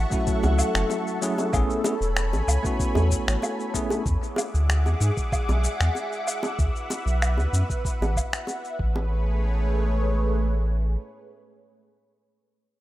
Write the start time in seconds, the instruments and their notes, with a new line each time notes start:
Already playing: analog synth pad A4 E5 F#5 C#6
0.11 tine electric piano F#3 A3 C#4 E4 F#4, kick, shaker
0.27 kick, shaker
0.43 analog synth bass C#2, high bongo, shaker
0.59 low woodblock, shaker
0.75 analog synth bass F#1, finger snap, shaker
0.90 high bongo, shaker
1.07 shaker
1.21 tine electric piano F#3 A3 C#4 E4 G#4, shaker
1.38 high bongo, shaker
1.53 analog synth bass A1, tine electric piano A3 B3 C#4 E4 G#4, analog synth pad C#5 G#5 B5, kick, low woodblock, shaker
1.70 shaker
1.84 tine electric piano A3 B3 C#4 E4 G#4, high bongo, shaker
2.01 analog synth bass E1, shaker
2.17 finger snap, shaker
2.32 analog synth bass A1, high bongo, shaker
2.48 analog synth bass C#2, low woodblock, shaker
2.63 tine electric piano A3 B3 C#4 E4 F#4, kick, shaker
2.80 kick, shaker
2.95 analog synth bass E2, high bongo, shaker
3.11 kick, shaker
3.28 analog synth bass A1, finger snap, shaker
3.42 high bongo, low woodblock, shaker
3.60 shaker
3.74 tine electric piano A3 B3 C#4 E4 G#4, kick, shaker
3.90 high bongo, shaker
4.06 analog synth bass E2, analog synth pad G#4 E5 F#5 D6, kick, shaker
4.23 shaker
4.36 high bongo, low woodblock, shaker
4.54 analog synth bass D2, shaker
4.70 finger snap, shaker
4.86 analog synth bass E2, high bongo, shaker
5.01 analog synth bass G#2, shaker
5.17 kick, shaker
5.32 kick, low woodblock, shaker
5.49 analog synth bass B1, high bongo, shaker
5.64 shaker
5.80 analog synth bass E2, finger snap, shaker
5.95 high bongo, shaker
6.13 shaker
6.27 low woodblock, shaker
6.43 high bongo, shaker
6.58 analog synth bass D2, analog synth pad B4, kick, shaker
6.76 shaker
6.90 high bongo, shaker
7.06 analog synth bass B1, shaker
7.22 finger snap, low woodblock, shaker
7.37 analog synth bass D2, high bongo, shaker
7.53 analog synth bass F#2, shaker
7.70 kick, shaker
7.85 kick, shaker
8.01 analog synth bass A1, high bongo, shaker
8.16 kick, low woodblock, shaker
8.33 finger snap, shaker
8.47 high bongo, shaker
8.65 shaker
8.78 analog synth bass A1, analog synth pad A3 G#4 B4 C#5, kick
8.96 high bongo